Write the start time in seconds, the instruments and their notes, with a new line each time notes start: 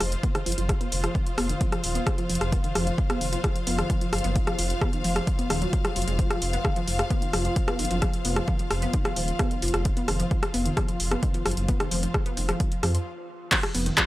Already playing: synth drone F3 F4, string section F4 C5 D#5 F5
0.00 detuned saw bass F1, synth arpeggio sound F3, cross-stick, open hi-hat
0.12 closed hi-hat
0.23 synth arpeggio sound B3, kick, closed hi-hat
0.35 synth arpeggio sound D#3, cross-stick, closed hi-hat
0.46 detuned saw bass F#1, synth arpeggio sound F3, open hi-hat
0.52 closed hi-hat
0.58 detuned saw bass F#1, synth arpeggio sound F3, closed hi-hat
0.69 kick, cross-stick, closed hi-hat
0.81 synth arpeggio sound B3, closed hi-hat
0.92 detuned saw bass F1, synth arpeggio sound D#3, open hi-hat
1.04 synth arpeggio sound F3, cross-stick, closed hi-hat
1.15 synth arpeggio sound F3, kick, closed hi-hat
1.27 closed hi-hat
1.38 detuned saw bass F1, synth arpeggio sound B3, cross-stick, open hi-hat
1.49 synth arpeggio sound D#3, closed hi-hat
1.61 synth arpeggio sound F3, kick, closed hi-hat
1.72 synth arpeggio sound F3, cross-stick, closed hi-hat
1.84 detuned saw bass D#1, open hi-hat
1.95 synth arpeggio sound B3, closed hi-hat
2.06 synth arpeggio sound D#3, kick, cross-stick, closed hi-hat
2.18 synth arpeggio sound F3, closed hi-hat
2.29 detuned saw bass F1, synth arpeggio sound F3, open hi-hat
2.35 closed hi-hat
2.41 detuned saw bass F1, cross-stick, closed hi-hat
2.52 synth arpeggio sound B3, kick, closed hi-hat
2.64 synth arpeggio sound D#3, closed hi-hat
2.75 detuned saw bass F1, synth arpeggio sound F3, cross-stick, open hi-hat
2.87 synth arpeggio sound F3, closed hi-hat
2.98 kick, closed hi-hat
3.10 synth arpeggio sound B3, cross-stick, closed hi-hat
3.21 detuned saw bass F1, synth arpeggio sound D#3, open hi-hat
3.33 synth arpeggio sound F3, closed hi-hat
3.44 synth arpeggio sound F3, kick, cross-stick, closed hi-hat
3.56 closed hi-hat
3.67 detuned saw bass F1, synth arpeggio sound B3, open hi-hat
3.78 synth arpeggio sound D#3, cross-stick, closed hi-hat
3.90 synth arpeggio sound F3, kick, closed hi-hat
4.01 synth arpeggio sound F3, closed hi-hat
4.13 detuned saw bass F#1, cross-stick, open hi-hat
4.18 closed hi-hat
4.24 detuned saw bass F#1, synth arpeggio sound B3, closed hi-hat
4.36 synth arpeggio sound D#3, kick, closed hi-hat
4.47 synth arpeggio sound F3, cross-stick, closed hi-hat
4.59 detuned saw bass F1, synth arpeggio sound F3, open hi-hat
4.70 closed hi-hat
4.81 synth arpeggio sound B3, kick, cross-stick, closed hi-hat
4.93 synth arpeggio sound D#3, closed hi-hat
5.04 detuned saw bass F1, synth arpeggio sound F3, open hi-hat
5.16 cross-stick, closed hi-hat
5.27 kick, closed hi-hat
5.39 synth arpeggio sound B3, closed hi-hat
5.50 detuned saw bass D#1, synth arpeggio sound D#3, cross-stick, open hi-hat
5.62 synth arpeggio sound F#3, closed hi-hat
5.73 synth arpeggio sound F#3, kick, closed hi-hat
5.85 cross-stick, closed hi-hat
5.96 detuned saw bass F1, synth arpeggio sound F#3, open hi-hat
6.02 closed hi-hat
6.08 detuned saw bass F1, synth arpeggio sound G#3, closed hi-hat
6.19 synth arpeggio sound F3, kick, closed hi-hat
6.30 synth arpeggio sound F3, cross-stick, closed hi-hat
6.42 detuned saw bass F1, open hi-hat
6.53 synth arpeggio sound B3, closed hi-hat
6.65 synth arpeggio sound D#3, kick, cross-stick, closed hi-hat
6.76 synth arpeggio sound F3, closed hi-hat
6.88 detuned saw bass F1, synth arpeggio sound F3, open hi-hat
6.99 cross-stick, closed hi-hat
7.10 synth arpeggio sound B3, kick, closed hi-hat
7.22 synth arpeggio sound D#3, closed hi-hat
7.33 detuned saw bass F1, synth arpeggio sound F3, cross-stick, open hi-hat
7.45 synth arpeggio sound F3, closed hi-hat
7.56 kick, closed hi-hat
7.68 synth arpeggio sound B3, cross-stick, closed hi-hat
7.79 detuned saw bass F#1, synth arpeggio sound D#3, open hi-hat
7.85 closed hi-hat
7.91 detuned saw bass F#1, synth arpeggio sound F3, closed hi-hat
8.02 synth arpeggio sound F3, kick, cross-stick, closed hi-hat
8.13 closed hi-hat
8.25 detuned saw bass F1, synth arpeggio sound B3, open hi-hat
8.36 synth arpeggio sound D#3, cross-stick, closed hi-hat
8.48 synth arpeggio sound F3, kick, closed hi-hat
8.59 synth arpeggio sound F3, closed hi-hat
8.71 detuned saw bass F1, cross-stick, open hi-hat
8.82 synth arpeggio sound B3, closed hi-hat
8.93 synth arpeggio sound D#3, kick, closed hi-hat
9.05 synth arpeggio sound F3, cross-stick, closed hi-hat
9.16 detuned saw bass D#1, synth arpeggio sound F3, open hi-hat
9.28 closed hi-hat
9.39 synth arpeggio sound B3, kick, cross-stick, closed hi-hat
9.51 synth arpeggio sound D#3, closed hi-hat
9.62 detuned saw bass F1, synth arpeggio sound F3, open hi-hat
9.68 closed hi-hat
9.74 detuned saw bass F1, synth arpeggio sound F3, cross-stick, closed hi-hat
9.85 kick, closed hi-hat
9.97 synth arpeggio sound B3, closed hi-hat
10.08 detuned saw bass F1, synth arpeggio sound D#3, cross-stick, open hi-hat
10.20 synth arpeggio sound F3, closed hi-hat
10.31 synth arpeggio sound F3, kick, closed hi-hat
10.43 cross-stick, closed hi-hat
10.54 detuned saw bass F1, synth arpeggio sound B3, open hi-hat
10.66 synth arpeggio sound D#3, closed hi-hat
10.77 synth arpeggio sound F3, kick, cross-stick, closed hi-hat
10.88 synth arpeggio sound F3, closed hi-hat
11.00 detuned saw bass F1, open hi-hat
11.11 synth arpeggio sound B3, cross-stick, closed hi-hat
11.23 synth arpeggio sound D#3, kick, closed hi-hat
11.34 synth arpeggio sound F3, closed hi-hat
11.46 detuned saw bass F#1, synth arpeggio sound F3, cross-stick, open hi-hat
11.51 closed hi-hat
11.57 detuned saw bass F#1, closed hi-hat
11.68 synth arpeggio sound B3, kick, closed hi-hat
11.80 synth arpeggio sound D#3, cross-stick, closed hi-hat
11.91 detuned saw bass F1, synth arpeggio sound F3, open hi-hat
12.03 synth arpeggio sound F3, closed hi-hat
12.14 kick, cross-stick, closed hi-hat
12.26 synth arpeggio sound B3, closed hi-hat
12.37 detuned saw bass F1, synth arpeggio sound D#3, open hi-hat
12.49 synth arpeggio sound F3, cross-stick, closed hi-hat
12.60 synth arpeggio sound F3, kick, closed hi-hat
12.72 closed hi-hat
12.83 detuned saw bass F2, synth arpeggio sound F3, cross-stick, open hi-hat
12.95 synth arpeggio sound F3, closed hi-hat
13.52 synth arpeggio sound F3, kick, clap, closed hi-hat, crash
13.63 cross-stick, closed hi-hat
13.75 detuned saw bass F1, synth arpeggio sound B3, open hi-hat
13.86 synth arpeggio sound D#3, closed hi-hat
13.97 synth arpeggio sound F3, kick, cross-stick, clap, closed hi-hat